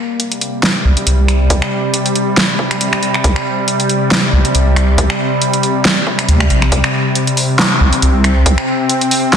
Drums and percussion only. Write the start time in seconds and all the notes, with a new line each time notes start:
0.20 closed hi-hat
0.32 closed hi-hat
0.41 closed hi-hat
0.63 snare, closed hi-hat
0.97 closed hi-hat
1.07 closed hi-hat
1.28 finger snap, closed hi-hat
1.50 kick, closed hi-hat
1.62 finger snap
1.94 closed hi-hat
2.06 closed hi-hat
2.15 closed hi-hat
2.37 snare, closed hi-hat
2.59 kick
2.71 finger snap, closed hi-hat
2.81 closed hi-hat
2.93 finger snap
3.03 closed hi-hat
3.14 finger snap
3.24 kick, closed hi-hat
3.36 finger snap
3.68 closed hi-hat
3.80 closed hi-hat
3.89 closed hi-hat
4.11 snare, closed hi-hat
4.45 closed hi-hat
4.55 closed hi-hat
4.76 finger snap, closed hi-hat
4.98 kick, closed hi-hat
5.10 finger snap
5.42 closed hi-hat
5.53 closed hi-hat
5.63 closed hi-hat
5.85 snare, closed hi-hat
6.07 kick
6.19 finger snap, closed hi-hat
6.29 closed hi-hat
6.40 finger snap
6.50 closed hi-hat
6.62 finger snap
6.72 kick, closed hi-hat
6.84 finger snap
7.15 closed hi-hat
7.27 closed hi-hat
7.37 open hi-hat
7.59 snare, clap, closed hi-hat
7.93 closed hi-hat
8.02 closed hi-hat
8.24 finger snap, closed hi-hat
8.46 kick, closed hi-hat
8.58 finger snap
8.89 closed hi-hat
9.01 closed hi-hat
9.11 open hi-hat
9.33 snare, clap, closed hi-hat